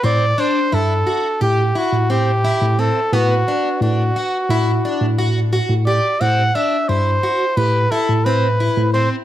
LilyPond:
<<
  \new Staff \with { instrumentName = "Trumpet" } { \time 9/8 \key a \dorian \tempo 4. = 58 d''8 c''8 a'4 g'8 fis'8 g'4 a'8 | fis'4 fis'2 r4 d''8 | fis''8 e''8 c''4 b'8 a'8 b'4 c''8 | }
  \new Staff \with { instrumentName = "Twelve-string acoustic guitar" } { \time 9/8 \key a \dorian c'8 d'8 e'8 fis'8 g'8 e'8 c'8 e'8 c'8 | b8 d'8 d'8 fis'8 e'8 d'8 fis'8 fis'8 g'8 | c'8 d'8 e'8 fis'8 g'8 e'8 c'8 e'8 c'8 | }
  \new Staff \with { instrumentName = "Tine electric piano" } { \clef bass \time 9/8 \key a \dorian a,8 r8 g,8 r8 a,8 r16 a,4 a,8 r16 | a,8 r8 a,8 r8 a,8 r16 a,4 a,8 r16 | a,8 r8 g,8 r8 a,8 r16 a,4 a,8 r16 | }
>>